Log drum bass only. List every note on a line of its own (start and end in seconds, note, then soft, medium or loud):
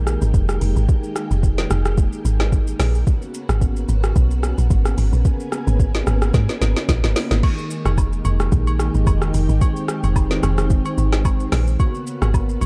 0.00 0.17 A#1 loud
0.22 0.33 G#1 medium
0.34 0.58 F1 loud
0.61 0.75 F1 loud
0.76 0.87 G#1 loud
1.31 1.66 F1 loud
1.71 2.08 F1 loud
2.25 2.74 G#1 loud
2.80 3.04 A#1 loud
3.49 3.85 G#1 loud
3.89 4.13 G#1 loud
4.16 4.54 B1 loud
4.58 4.69 A#1 medium
4.70 4.95 G#1 loud
4.98 5.11 G#1 medium
5.13 5.24 A#1 medium
5.67 6.03 G#1 loud
6.07 6.31 G#1 loud
6.34 6.48 G#2 loud
6.61 6.75 G#1 loud
6.89 7.02 A#1 loud
7.04 7.15 G#1 loud
7.31 7.42 G#1 medium
7.85 8.21 F1 loud
8.25 8.49 F1 loud
8.52 8.90 A#1 loud
8.95 9.06 G#1 medium
9.07 9.31 F1 loud
9.34 9.47 F1 loud
9.49 9.60 G#1 loud
10.04 10.39 F1 medium
10.43 10.81 F1 loud
10.98 11.47 G#1 loud
11.52 11.77 A#1 loud
12.22 12.57 G#1 loud
12.61 12.66 G#1 loud